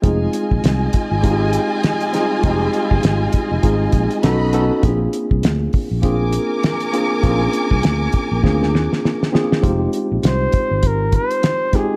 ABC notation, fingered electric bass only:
X:1
M:4/4
L:1/16
Q:"Swing 16ths" 1/4=100
K:Fdor
V:1 name="Fingered electric bass" clef=bass
F,,,2 z B,,, C,,2 z A,,,4 z4 z | F,,,2 z G,,, A,,,2 z F,,, A,,,2 B,,, z =B,,,4 | B,,,2 z C,, D,,2 z B,,,4 z4 z | B,,,2 z C,, D,,2 z B,,, D,,2 E,, z4 z |
F,,,2 z B,,, C,,2 z A,,,4 z4 z |]